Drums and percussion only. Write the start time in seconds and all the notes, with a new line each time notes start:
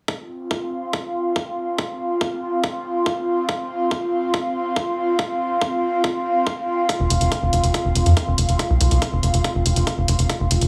0.08 kick
0.51 kick
0.93 kick
1.36 kick
1.78 kick
2.21 kick
2.64 kick
3.06 kick
3.49 kick
3.91 kick
4.34 kick
4.76 kick
5.19 kick
5.61 kick
6.04 kick
6.47 kick
6.89 kick, closed hi-hat
7.10 closed hi-hat
7.21 closed hi-hat
7.32 kick, closed hi-hat
7.53 closed hi-hat
7.64 closed hi-hat
7.74 kick, closed hi-hat
7.95 closed hi-hat
8.06 closed hi-hat
8.17 kick, closed hi-hat
8.38 closed hi-hat
8.49 closed hi-hat
8.59 kick, closed hi-hat
8.81 closed hi-hat
8.91 closed hi-hat
9.02 kick, closed hi-hat
9.23 closed hi-hat
9.34 closed hi-hat
9.44 kick, closed hi-hat
9.66 closed hi-hat
9.76 closed hi-hat
9.87 kick, closed hi-hat
10.08 closed hi-hat
10.19 closed hi-hat
10.30 kick, closed hi-hat
10.51 closed hi-hat
10.61 closed hi-hat